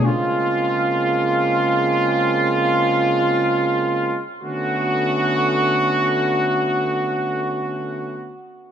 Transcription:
0.06 4.25 C#3 medium
0.06 4.25 G#3 medium
0.06 4.25 A#3 medium
0.06 4.25 C4 medium
0.06 4.25 F4 medium
4.42 8.37 D3 medium
4.42 8.37 A3 medium
4.42 8.37 B3 medium
4.42 8.37 C#4 medium
4.42 8.37 F#4 medium

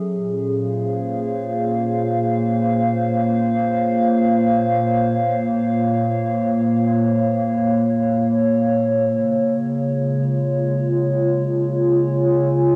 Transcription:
0.00 0.11 F#3 medium
0.00 3.67 C#4 medium
0.00 2.89 G#4 medium
0.00 0.11 A4 medium
0.00 0.11 E5 medium
0.11 9.11 A#2 medium
0.40 12.76 C#5 medium
0.49 9.12 C5 medium
0.49 12.73 F5 medium
0.58 12.59 A#3 medium
9.12 12.76 C#3 medium
9.61 12.76 F4 medium
9.74 12.76 G#3 medium
11.60 12.76 G#5 medium

